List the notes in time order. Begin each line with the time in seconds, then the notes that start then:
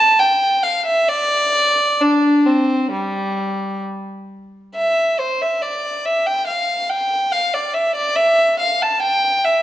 Already playing: A5
0.19 G5
0.63 F5
0.86 E5
1.09 D5
2.01 D4
2.46 C4
2.92 G3
4.75 E5
5.19 C5
5.42 E5
5.62 D5
6.06 E5
6.27 G5
6.47 F5
6.89 G5
7.32 F5
7.54 D5
7.74 E5
7.95 D5
8.16 E5
8.59 F5
8.82 A5
9.02 G5
9.44 E5